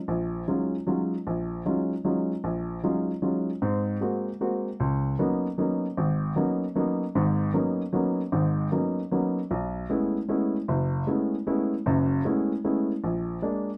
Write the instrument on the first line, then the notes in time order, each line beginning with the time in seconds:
grand piano
0.08 A#1
0.48 F#3 G#3 C#4 D#4 F4
0.87 F#3 G#3 C#4 D#4 F4
1.27 A#1
1.66 F#3 G#3 C#4 D#4 F4
2.04 F#3 G#3 C#4 D#4 F4
2.44 A#1
2.83 F#3 G#3 C#4 D#4 F4
3.22 F#3 G#3 C#4 D#4 F4
3.62 G#2 C4
4.01 G#3 A#3 C4 F#4
4.41 G#3 A#3 C4 F#4
4.80 C#2
5.19 F#3 A#3 B3 C#4 D#4
5.58 F#3 A#3 B3 C#4 D#4
5.97 G#1
6.36 F#3 A#3 B3 C#4 D#4
6.75 F#3 A#3 B3 C#4 D#4
7.15 G#1 G#2
7.54 F#3 A#3 B3 C#4 D#4
7.93 F#3 A#3 B3 C#4 D#4
8.32 G#1 G#2
8.72 F#3 A#3 B3 C#4 D#4
9.11 F#3 A#3 B3 C#4 D#4
9.51 B1
9.90 G#3 A3 B3 C#4 E4
10.29 G#3 A3 B3 C#4 E4
10.68 F#1
11.07 G#3 A3 B3 C#4 E4
11.47 G#3 A3 B3 C#4 E4
11.86 F#1 F#2
12.25 G#3 A3 B3 C#4 E4
12.64 G#3 A3 B3 C#4 E4
13.04 A#1
13.42 G#3 A#3 D4